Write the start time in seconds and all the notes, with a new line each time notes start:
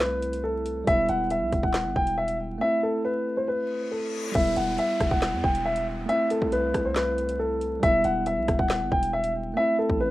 Already playing: C2 A3 C4 E4
0.00 B4, snare, clap, closed hi-hat
0.22 closed hi-hat
0.33 closed hi-hat
0.44 A4
0.66 closed hi-hat
0.84 E1 G3 B3 E5, kick, closed hi-hat
0.90 E4
1.09 E1 F#5, closed hi-hat
1.30 E5, closed hi-hat
1.42 B1
1.52 E1, kick, closed hi-hat
1.63 D#1 F#5, kick
1.74 snare, clap, closed hi-hat
1.85 G1
1.96 E1 G5, kick
2.07 closed hi-hat
2.18 E5
2.28 closed hi-hat
2.58 A3 C4 E5
2.64 E4
2.83 A4
3.05 B4
3.37 C5
3.48 B4, reverse cymbal
3.91 A4
4.32 E1 G3 B3 E5, kick, closed hi-hat, crash, downlifter
4.38 E4
4.56 E1 F#5, closed hi-hat
4.78 E5, closed hi-hat
5.00 E1, kick, cross-stick, closed hi-hat
5.11 E1 F#5, kick
5.21 snare, clap, closed hi-hat
5.33 E2
5.44 E1 G5, kick
5.55 closed hi-hat
5.65 E5
5.76 closed hi-hat
6.06 A3 C4 E5, closed hi-hat
6.12 E4
6.30 A4, closed hi-hat
6.42 C2, kick
6.52 B4, closed hi-hat
6.74 C2, kick, cross-stick, closed hi-hat
6.85 C5
6.95 B4, snare, clap, closed hi-hat
7.18 closed hi-hat
7.29 closed hi-hat
7.39 A4
7.61 closed hi-hat
7.80 E1 G3 B3 E5, kick, closed hi-hat
7.86 E4
8.04 E1 F#5, closed hi-hat
8.26 E5, closed hi-hat
8.37 B1
8.48 E1, kick, cross-stick, closed hi-hat
8.59 D#1 F#5, kick
8.69 snare, clap, closed hi-hat
8.81 G1
8.92 E1 G5, kick
9.03 closed hi-hat
9.13 E5
9.24 closed hi-hat
9.54 A3 C4 E5
9.60 E4
9.79 A4
9.89 A1, kick
10.00 B4